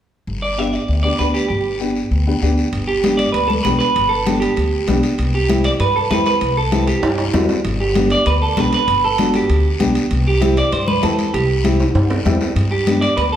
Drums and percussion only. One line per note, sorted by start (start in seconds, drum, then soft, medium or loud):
0.27 long guiro medium
0.58 short guiro medium
0.73 short guiro medium
0.88 long guiro medium
1.19 short guiro medium
1.35 short guiro medium
1.50 long guiro medium
1.80 short guiro medium
1.96 short guiro medium
2.12 long guiro medium
2.42 short guiro medium
2.58 short guiro medium
2.73 high timbale medium
2.73 long guiro medium
3.04 high conga medium
3.04 high timbale medium
3.04 short guiro medium
3.19 high timbale medium
3.19 short guiro medium
3.34 high timbale medium
3.34 long guiro medium
3.50 high conga medium
3.65 high conga medium
3.65 high timbale medium
3.65 short guiro medium
3.80 high timbale medium
3.80 short guiro medium
3.96 high timbale medium
3.96 long guiro medium
4.26 high conga medium
4.26 high timbale medium
4.26 short guiro medium
4.42 high timbale medium
4.42 short guiro medium
4.56 high timbale medium
4.56 long guiro medium
4.87 high conga medium
4.87 high timbale medium
4.87 low timbale medium
4.87 short guiro medium
5.03 high timbale medium
5.03 short guiro medium
5.18 high timbale medium
5.18 long guiro medium
5.49 high conga medium
5.49 high timbale medium
5.49 short guiro medium
5.64 high timbale medium
5.64 short guiro medium
5.80 high timbale medium
5.80 long guiro medium
6.11 high conga medium
6.11 high timbale medium
6.11 short guiro medium
6.26 high timbale medium
6.26 short guiro medium
6.41 high timbale medium
6.41 long guiro medium
6.72 high conga medium
6.72 high timbale medium
6.72 short guiro medium
6.88 high timbale medium
6.88 short guiro medium
7.03 high timbale loud
7.03 long guiro medium
7.18 high timbale medium
7.34 high conga medium
7.34 low timbale medium
7.34 short guiro medium
7.49 low timbale medium
7.49 short guiro medium
7.65 high timbale medium
7.65 long guiro medium
7.95 high conga medium
7.95 high timbale medium
7.95 short guiro medium
8.10 high timbale medium
8.10 short guiro medium
8.26 high timbale medium
8.26 long guiro medium
8.57 high conga medium
8.57 high timbale medium
8.57 low timbale medium
8.57 short guiro medium
8.73 high timbale medium
8.73 short guiro medium
8.88 high timbale medium
8.88 long guiro medium
9.18 high conga medium
9.18 high timbale medium
9.18 short guiro medium
9.34 high timbale medium
9.34 short guiro medium
9.50 high timbale medium
9.50 long guiro medium
9.80 high conga medium
9.80 high timbale medium
9.80 short guiro medium
9.95 high timbale medium
9.95 short guiro medium
10.11 high timbale medium
10.11 long guiro medium
10.42 high conga medium
10.42 high timbale medium
10.42 short guiro medium
10.57 high timbale medium
10.57 short guiro medium
10.72 high timbale medium
10.72 long guiro medium
10.88 high conga medium
11.03 high conga medium
11.03 high timbale medium
11.03 short guiro medium
11.19 high timbale medium
11.19 short guiro medium
11.34 high timbale medium
11.34 long guiro medium
11.65 high conga medium
11.65 high timbale medium
11.65 short guiro medium
11.80 high timbale medium
11.80 short guiro medium
11.95 high timbale medium
11.95 long guiro medium
12.10 low timbale loud
12.25 high conga medium
12.25 low timbale medium
12.25 short guiro medium
12.41 low timbale medium
12.41 short guiro medium
12.56 high timbale medium
12.56 long guiro medium
12.87 high conga medium
12.87 high timbale medium
12.87 short guiro medium
13.02 high timbale medium
13.02 short guiro medium
13.18 high timbale medium
13.18 long guiro medium